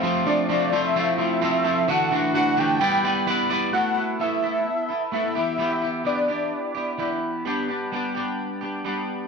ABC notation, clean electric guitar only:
X:1
M:4/4
L:1/8
Q:1/4=129
K:G
V:1 name="Clean electric guitar"
[=F,A,C=F] [F,A,CF] [F,A,CF] [F,A,CF] [F,A,CF] [F,A,CF] [F,A,CF] [F,A,CF] | [D,E,A,DF] [D,E,A,DF] [D,E,A,DF] [D,E,A,DF] [G,B,EBd] [G,B,EBd] [G,B,EBd] [G,B,EBd] | [A,B,EA] [B,EA] [A,B,EA] [B,EA]2 [B,EA] [A,B,EA] [E,B,EG] | [E,B,EG] [B,EG] [E,B,EG] [B,EG]2 [B,EG] [E,B,EG]2 |
[G,B,DG] [B,DG] [G,B,DG] [B,DG]2 [B,DG] [G,B,DG]2 |]